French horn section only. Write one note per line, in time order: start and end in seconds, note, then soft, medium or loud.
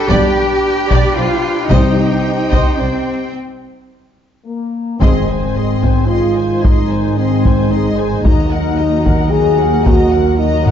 0.08 0.28 D4 medium
0.08 0.27 G4 medium
1.70 1.90 C4 medium
1.70 1.89 G4 medium
4.45 4.97 A#3 medium
5.00 6.05 C4 medium
6.06 6.62 F4 medium
6.64 7.18 D#4 medium
7.18 7.71 C4 medium
7.70 8.22 D#4 medium
8.24 9.29 D#4 medium
9.31 9.85 G#4 medium
9.86 10.40 F#4 medium
10.38 10.71 D#4 medium